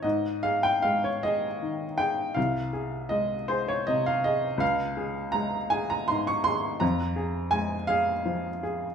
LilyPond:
\new Staff \with { instrumentName = "Upright piano" } { \time 12/8 \key aes \major \tempo 4. = 54 << { ees''8 f''16 g''16 f''16 des''16 ees''4 g''8 f''4 ees''8 c''16 des''16 ees''16 f''16 ees''8 | f''4 bes''8 aes''16 bes''16 c'''16 des'''16 c'''8 bes''4 aes''8 f''4 r8 | } \\ { aes,8 aes'8 aes8 aes'8 ees8 aes'8 c,8 aes'8 aes8 aes'8 c8 aes'8 | des,8 aes'8 aes8 aes'8 aes,8 aes'8 f,8 aes'8 aes8 aes'8 f8 aes'8 | } >> }